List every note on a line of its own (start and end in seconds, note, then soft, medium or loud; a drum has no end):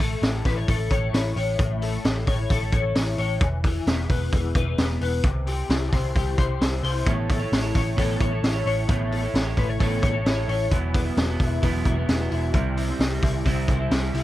0.00 0.14 A1 medium
0.00 1.58 A3 medium
0.00 0.67 A4 medium
0.00 kick loud
0.00 open hi-hat medium
0.22 0.41 A1 loud
0.22 1.13 E4 medium
0.22 snare loud
0.22 hi-hat pedal medium
0.22 open hi-hat medium
0.45 0.64 A1 medium
0.45 0.57 B4 medium
0.45 kick loud
0.45 snare soft
0.45 hi-hat pedal medium
0.45 open hi-hat medium
0.57 0.90 C#5 medium
0.68 0.87 A1 loud
0.68 1.80 A4 medium
0.68 kick loud
0.68 hi-hat pedal medium
0.68 open hi-hat medium
0.90 1.09 A1 medium
0.90 1.35 C#5 medium
0.90 kick loud
0.90 hi-hat pedal medium
0.90 open hi-hat medium
1.13 1.32 A1 loud
1.13 2.04 E4 medium
1.13 snare loud
1.13 hi-hat pedal medium
1.13 open hi-hat medium
1.36 1.55 A1 medium
1.36 2.26 C#5 medium
1.36 hi-hat pedal medium
1.36 open hi-hat medium
1.59 1.97 A1 loud
1.59 3.41 A3 medium
1.59 kick loud
1.59 hi-hat pedal medium
1.59 open hi-hat loud
1.82 2.49 A4 medium
1.82 hi-hat pedal medium
1.82 open hi-hat medium
2.04 2.23 A1 loud
2.04 2.95 E4 medium
2.04 snare loud
2.04 hi-hat pedal medium
2.04 open hi-hat medium
2.27 2.46 A1 loud
2.27 2.71 C#5 medium
2.27 kick loud
2.27 hi-hat pedal medium
2.27 open hi-hat medium
2.50 2.69 A1 loud
2.50 3.46 A4 medium
2.50 kick loud
2.50 hi-hat pedal medium
2.50 open hi-hat medium
2.72 2.91 A1 loud
2.72 3.17 C#5 medium
2.72 kick loud
2.72 hi-hat pedal medium
2.72 open hi-hat medium
2.95 3.15 A1 loud
2.95 3.64 E4 medium
2.95 snare loud
2.95 hi-hat pedal medium
2.95 open hi-hat medium
3.18 3.37 A1 loud
3.18 3.46 C#5 medium
3.18 hi-hat pedal medium
3.18 open hi-hat medium
3.40 3.79 E1 loud
3.40 5.24 E3 medium
3.40 kick loud
3.40 hi-hat pedal medium
3.40 open hi-hat medium
3.64 4.33 E4 medium
3.64 kick loud
3.64 hi-hat pedal medium
3.64 open hi-hat medium
3.87 4.06 E1 loud
3.87 4.77 B3 medium
3.87 snare loud
3.87 hi-hat pedal medium
3.87 open hi-hat medium
4.09 4.28 E1 loud
4.09 4.54 B4 medium
4.09 kick loud
4.09 hi-hat pedal medium
4.09 open hi-hat medium
4.32 4.52 E1 loud
4.32 5.69 E4 medium
4.32 kick loud
4.32 hi-hat pedal medium
4.32 open hi-hat medium
4.55 4.74 E1 medium
4.55 5.00 B4 medium
4.55 kick loud
4.55 hi-hat pedal medium
4.55 open hi-hat medium
4.78 4.97 E1 loud
4.78 5.29 B3 medium
4.78 snare loud
4.78 hi-hat pedal medium
4.78 open hi-hat medium
5.01 5.20 E1 loud
5.01 5.29 B4 medium
5.01 hi-hat pedal medium
5.01 open hi-hat medium
5.24 5.61 C2 loud
5.24 7.07 C3 medium
5.24 kick loud
5.24 hi-hat pedal medium
5.24 open hi-hat medium
5.47 6.14 G4 medium
5.47 hi-hat pedal medium
5.47 open hi-hat medium
5.69 5.88 C2 loud
5.69 6.60 E4 medium
5.69 snare loud
5.69 hi-hat pedal medium
5.69 open hi-hat medium
5.92 6.11 C2 loud
5.92 6.37 C5 medium
5.92 kick loud
5.92 snare soft
5.92 hi-hat pedal medium
5.92 open hi-hat medium
6.15 6.34 C2 loud
6.15 7.11 G4 medium
6.15 kick loud
6.15 hi-hat pedal medium
6.15 open hi-hat medium
6.38 6.57 C2 medium
6.38 6.82 C5 medium
6.38 kick loud
6.38 hi-hat pedal medium
6.38 open hi-hat medium
6.61 6.80 C2 loud
6.61 7.52 E4 medium
6.61 snare loud
6.61 hi-hat pedal medium
6.61 open hi-hat medium
6.83 7.02 C2 loud
6.83 7.11 C5 medium
6.83 hi-hat pedal medium
6.83 open hi-hat medium
7.06 7.44 A1 loud
7.06 8.87 A3 medium
7.06 7.40 B3 medium
7.06 7.41 E4 medium
7.06 7.40 A4 medium
7.06 7.38 C#5 medium
7.06 kick loud
7.06 hi-hat pedal medium
7.06 open hi-hat loud
7.29 7.97 A4 medium
7.29 kick loud
7.29 hi-hat pedal medium
7.29 open hi-hat medium
7.39 7.64 E4 soft
7.39 7.63 A4 medium
7.39 7.61 C#5 medium
7.52 7.71 A1 loud
7.52 8.43 E4 medium
7.52 snare loud
7.52 hi-hat pedal medium
7.52 open hi-hat medium
7.62 7.96 E4 medium
7.62 7.97 A4 medium
7.62 7.97 C#5 medium
7.75 7.94 A1 loud
7.75 8.19 C#5 medium
7.75 kick medium
7.75 snare soft
7.75 hi-hat pedal medium
7.75 open hi-hat medium
7.97 8.16 A1 loud
7.97 8.31 A3 medium
7.97 8.32 B3 medium
7.97 8.32 E4 medium
7.97 9.10 A4 medium
7.97 8.31 A4 loud
7.97 8.29 C#5 loud
7.97 kick loud
7.97 hi-hat pedal medium
7.97 open hi-hat medium
8.20 8.39 A1 medium
8.20 8.65 C#5 medium
8.20 kick loud
8.20 hi-hat pedal medium
8.20 open hi-hat medium
8.31 8.55 E4 medium
8.31 8.54 A4 medium
8.31 8.52 C#5 medium
8.43 8.62 A1 loud
8.43 9.34 E4 medium
8.43 snare loud
8.43 hi-hat pedal medium
8.43 open hi-hat medium
8.53 8.87 E4 medium
8.53 8.89 A4 medium
8.53 8.88 C#5 medium
8.66 8.84 A1 medium
8.66 9.57 C#5 medium
8.66 hi-hat pedal medium
8.66 open hi-hat medium
8.88 9.26 A1 loud
8.88 10.71 A3 medium
8.88 9.22 B3 medium
8.88 9.23 E4 medium
8.88 9.24 A4 medium
8.88 9.21 C#5 medium
8.88 kick loud
8.88 hi-hat pedal medium
8.88 open hi-hat loud
9.11 9.78 A4 medium
9.11 hi-hat pedal medium
9.11 open hi-hat medium
9.23 9.47 E4 medium
9.23 9.46 A4 medium
9.23 9.44 C#5 medium
9.34 9.53 A1 loud
9.34 10.25 E4 medium
9.34 snare loud
9.34 hi-hat pedal medium
9.34 open hi-hat medium
9.45 9.79 E4 soft
9.45 9.80 A4 medium
9.45 9.80 C#5 medium
9.57 9.76 A1 loud
9.57 9.68 B4 medium
9.57 kick medium
9.57 hi-hat pedal medium
9.57 open hi-hat medium
9.68 10.01 C#5 medium
9.79 9.99 A1 loud
9.79 10.14 A3 medium
9.79 10.14 B3 medium
9.79 10.15 E4 loud
9.79 10.76 A4 medium
9.79 10.14 A4 medium
9.79 10.12 C#5 loud
9.79 kick loud
9.79 hi-hat pedal medium
9.79 open hi-hat medium
10.02 10.22 A1 loud
10.02 10.47 C#5 medium
10.02 kick loud
10.02 hi-hat pedal medium
10.02 open hi-hat medium
10.13 10.38 E4 medium
10.13 10.36 A4 medium
10.13 10.34 C#5 medium
10.25 10.44 A1 loud
10.25 10.93 E4 medium
10.25 snare loud
10.25 hi-hat pedal medium
10.25 open hi-hat medium
10.35 10.72 E4 medium
10.35 10.71 A4 medium
10.35 10.70 C#5 medium
10.48 10.67 A1 loud
10.48 10.76 C#5 medium
10.48 hi-hat pedal medium
10.48 open hi-hat medium
10.71 11.09 E1 loud
10.71 11.05 E3 medium
10.71 12.53 E3 medium
10.71 11.06 F#3 medium
10.71 11.05 B3 medium
10.71 11.03 E4 medium
10.71 kick loud
10.71 hi-hat pedal medium
10.71 open hi-hat medium
10.94 11.61 B3 medium
10.94 kick loud
10.94 hi-hat pedal medium
10.94 open hi-hat medium
11.04 11.29 F#3 medium
11.04 11.28 B3 medium
11.04 11.27 E4 medium
11.17 11.36 E1 loud
11.17 12.07 F#3 medium
11.17 snare loud
11.17 hi-hat pedal medium
11.17 open hi-hat medium
11.28 11.62 F#3 medium
11.28 11.63 B3 medium
11.28 11.62 E4 medium
11.40 11.58 E1 loud
11.40 11.85 E4 medium
11.40 kick medium
11.40 hi-hat pedal medium
11.40 open hi-hat medium
11.62 11.81 E1 loud
11.62 11.96 E3 medium
11.62 11.97 F#3 medium
11.62 12.58 B3 medium
11.62 11.97 B3 loud
11.62 11.95 E4 loud
11.62 kick loud
11.62 hi-hat pedal medium
11.62 open hi-hat medium
11.85 12.04 E1 loud
11.85 12.31 E4 medium
11.85 kick loud
11.85 hi-hat pedal medium
11.85 open hi-hat medium
11.96 12.21 F#3 medium
11.96 12.20 B3 medium
11.96 12.18 E4 medium
12.08 12.27 E1 loud
12.08 12.58 F#3 medium
12.08 snare loud
12.08 hi-hat pedal medium
12.08 open hi-hat medium
12.19 12.54 F#3 soft
12.19 12.55 B3 medium
12.19 12.54 E4 medium
12.31 12.50 E1 loud
12.31 13.21 E4 medium
12.31 hi-hat pedal medium
12.31 open hi-hat medium
12.53 12.91 C2 loud
12.53 12.88 C3 medium
12.53 14.23 C3 medium
12.53 12.88 G3 medium
12.53 12.88 C4 medium
12.53 12.87 E4 medium
12.53 kick loud
12.53 hi-hat pedal medium
12.53 open hi-hat medium
12.76 13.44 C4 medium
12.76 hi-hat pedal medium
12.76 open hi-hat medium
12.88 13.12 G3 medium
12.88 13.11 C4 medium
12.88 13.10 E4 medium
12.99 13.18 C2 loud
12.99 13.90 G3 medium
12.99 snare loud
12.99 hi-hat pedal medium
12.99 open hi-hat medium
13.11 13.44 G3 medium
13.11 13.45 C4 medium
13.11 13.45 E4 medium
13.22 13.41 C2 loud
13.22 13.68 E4 medium
13.22 kick loud
13.22 snare soft
13.22 hi-hat pedal medium
13.22 open hi-hat medium
13.45 13.64 C2 loud
13.45 13.79 C3 medium
13.45 13.80 G3 loud
13.45 14.23 C4 medium
13.45 13.79 C4 medium
13.45 13.77 E4 loud
13.45 kick medium
13.45 hi-hat pedal medium
13.45 open hi-hat medium
13.68 13.87 C2 medium
13.68 14.13 E4 medium
13.68 kick loud
13.68 hi-hat pedal medium
13.68 open hi-hat medium
13.79 14.03 G3 medium
13.79 14.01 C4 medium
13.79 13.99 E4 medium
13.91 14.10 C2 loud
13.91 14.23 G3 medium
13.91 snare loud
13.91 hi-hat pedal medium
13.91 open hi-hat medium
14.01 14.23 G3 soft
14.01 14.23 C4 medium
14.01 14.23 E4 medium
14.14 14.23 C2 loud
14.14 14.23 E4 medium
14.14 hi-hat pedal medium
14.14 open hi-hat medium